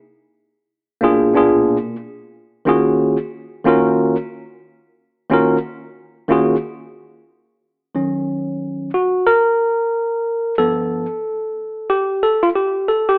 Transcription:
tine electric piano
1.01 B2 A#3 D4 F4 G#4
1.34 A#2 B3 D4 F4 G#4
2.65 D#3 A#3 C#4 F4 F#4 G#4
3.65 D#3 A#3 C#4 F4 F#4 A#4
5.30 D#3 A#3 C#4 F4 F#4 A#4
6.28 D#3 A#3 C#4 F4 F#4 G#4
7.94 D#3 F#3 C#4
8.94 F#4
9.27 A#4
10.58 G2 F3 B3 A4
11.90 G4
12.23 A4
12.43 F4
12.55 G4
12.88 A4
13.09 G4

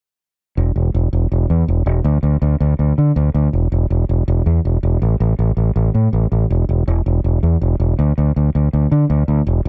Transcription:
fingered electric bass
0.57 E1
0.76 E1
0.95 E1
1.13 E1
1.32 E1
1.50 E2
1.68 E1
1.86 E1
2.04 D2
2.23 D2
2.42 D2
2.60 D2
2.79 D2
2.98 D3
3.16 D2
3.34 D2
3.53 E1
3.72 E1
3.90 E1
4.09 E1
4.28 E1
4.46 E2
4.65 E1
4.83 E1
5.02 A1
5.20 A1
5.39 A1
5.57 A1
5.76 A1
5.95 A2
6.13 A1
6.32 A1
6.51 E1
6.69 E1
6.88 E1
7.06 E1
7.24 E1
7.43 E2
7.62 E1
7.80 E1
7.99 D2
8.18 D2
8.36 D2
8.55 D2
8.73 D2
8.92 D3
9.10 D2
9.28 D2
9.47 E1
9.65 E1

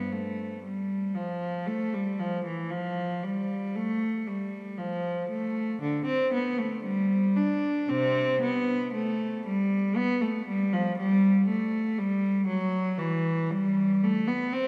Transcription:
cello
Already playing: B3
0.12 A3
0.64 G3
1.15 F3
1.66 A3
1.94 G3
2.19 F3
2.45 E3
2.70 F3
3.24 G3
3.75 A3
4.27 G3
4.78 F3
5.30 A3
5.82 D3
6.06 C4
6.34 B3
6.58 A3
6.83 G3
7.36 D4
7.89 C3 C4
8.42 B3
8.94 A3
9.46 G3
9.96 B3
10.21 A3
10.47 G3
10.72 F3
10.98 G3
11.48 A3
11.98 G3
12.47 F#3
12.98 E3
13.50 G3
14.03 A3
14.27 B3
14.53 C4

